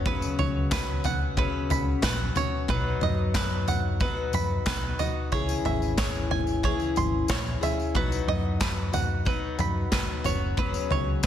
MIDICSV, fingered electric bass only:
0, 0, Header, 1, 2, 480
1, 0, Start_track
1, 0, Key_signature, 5, "major"
1, 0, Tempo, 657895
1, 45, Time_signature, 4, 2, 24, 8
1, 8219, End_track
2, 0, Start_track
2, 0, Title_t, "Fingered electric bass"
2, 0, Program_c, 0, 33
2, 0, Note_on_c, 0, 30, 90
2, 171, Note_off_c, 0, 30, 0
2, 282, Note_on_c, 0, 37, 87
2, 1016, Note_off_c, 0, 37, 0
2, 1244, Note_on_c, 0, 37, 92
2, 1428, Note_off_c, 0, 37, 0
2, 1480, Note_on_c, 0, 34, 93
2, 1665, Note_off_c, 0, 34, 0
2, 1961, Note_on_c, 0, 35, 91
2, 2146, Note_off_c, 0, 35, 0
2, 2206, Note_on_c, 0, 42, 90
2, 2938, Note_off_c, 0, 42, 0
2, 3162, Note_on_c, 0, 42, 97
2, 3347, Note_off_c, 0, 42, 0
2, 3404, Note_on_c, 0, 35, 94
2, 3588, Note_off_c, 0, 35, 0
2, 3885, Note_on_c, 0, 37, 87
2, 4068, Note_off_c, 0, 37, 0
2, 4125, Note_on_c, 0, 32, 90
2, 4857, Note_off_c, 0, 32, 0
2, 5083, Note_on_c, 0, 32, 83
2, 5267, Note_off_c, 0, 32, 0
2, 5324, Note_on_c, 0, 34, 93
2, 5507, Note_off_c, 0, 34, 0
2, 5801, Note_on_c, 0, 35, 86
2, 5985, Note_off_c, 0, 35, 0
2, 6037, Note_on_c, 0, 42, 90
2, 6772, Note_off_c, 0, 42, 0
2, 6998, Note_on_c, 0, 42, 91
2, 7183, Note_off_c, 0, 42, 0
2, 7242, Note_on_c, 0, 31, 97
2, 7334, Note_off_c, 0, 31, 0
2, 7476, Note_on_c, 0, 30, 83
2, 7845, Note_off_c, 0, 30, 0
2, 7957, Note_on_c, 0, 37, 83
2, 8219, Note_off_c, 0, 37, 0
2, 8219, End_track
0, 0, End_of_file